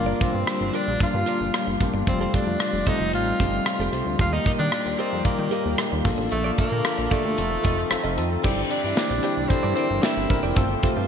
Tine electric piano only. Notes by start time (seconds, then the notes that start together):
Already playing: G3 A#3 D4 F4
0.20 G3 A#3 D4 F4
0.47 G3 A#3 D4 G4
0.73 G3 A#3 D4 G4
1.00 G3 A#3 D4 F4
1.27 G3 A#3 D4 F4
1.53 G3 A#3 D4 F4
1.80 G3 A#3 D4 G4
2.07 G3 A3 C4 F4
2.34 G3 A3 C4 F4
2.60 G3 A3 C4 G4
2.87 G3 A3 C4 F4
3.13 G3 A3 C4 D#4
3.40 G3 A3 C4 F4
3.66 G3 A3 C4 F4
3.92 G3 A3 C4 F4
4.18 G3 A#3 D#4 G4
4.45 G3 A#3 D#4 G4
4.71 G3 A#3 D#4 F4
4.98 G3 A#3 D#4 A#4
5.24 G3 A#3 D#4 F4
5.51 G3 A#3 D#4 G4
5.78 G3 A#3 D#4 G4
6.04 A#3 D4 F4 A4
6.57 A#3 D4 F4 A4
6.84 A#3 D4 F4 A4
7.11 A#3 D4 F4 G4
7.38 C4 D#4 F4 A4
7.64 C4 D#4 F4 C5
7.90 C4 D#4 F4 A4
8.17 C4 D#4 F4 A4
8.43 C4 D4 E4 G4
8.70 C4 D4 E4 G4
8.96 C4 D4 E4 G4
9.23 C4 D4 E4 G4
9.50 C4 D4 E4 A4
9.76 C4 D4 E4 A#4
10.03 C4 D4 E4 G4
10.29 C4 D4 E4 A#4
10.56 A3 C4 F4 A4
10.83 A3 C4 F4 G4